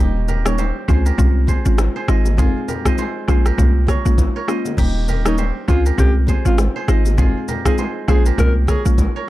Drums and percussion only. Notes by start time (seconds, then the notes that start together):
0.28 high bongo, low conga, shaker
0.46 cross-stick, shaker
0.58 high bongo, shaker
0.89 kick, low bongo, shaker
1.06 shaker
1.18 kick, low conga, shaker
1.47 kick, low bongo, shaker
1.65 shaker
1.78 cross-stick, high bongo, shaker
2.08 cross-stick, shaker
2.25 low bongo, shaker
2.37 kick, low conga, shaker
2.68 high bongo, low conga, shaker
2.85 kick, cross-stick, shaker
2.98 high bongo, shaker
3.28 kick, cross-stick, low bongo, shaker
3.46 cross-stick, shaker
3.58 kick, low conga, shaker
3.87 kick, cross-stick, low bongo, shaker
4.06 shaker
4.18 kick, high bongo, shaker
4.48 cross-stick, shaker
4.65 low bongo, shaker
4.77 kick, crash, low conga, shaker
5.08 high bongo, low conga, shaker
5.26 cross-stick, shaker
5.38 high bongo, shaker
5.68 kick, shaker
5.86 shaker
5.98 kick, low conga, shaker
6.27 kick, low bongo, shaker
6.45 shaker
6.58 cross-stick, high bongo, shaker
6.88 cross-stick, shaker
7.05 low bongo, shaker
7.17 kick, low conga, shaker
7.48 high bongo, low conga, shaker
7.65 kick, cross-stick, shaker
7.78 high bongo, shaker
8.08 kick, cross-stick, shaker
8.26 shaker
8.38 kick, low conga, shaker
8.67 kick, cross-stick, low bongo, shaker
8.85 shaker
8.98 kick, high bongo, shaker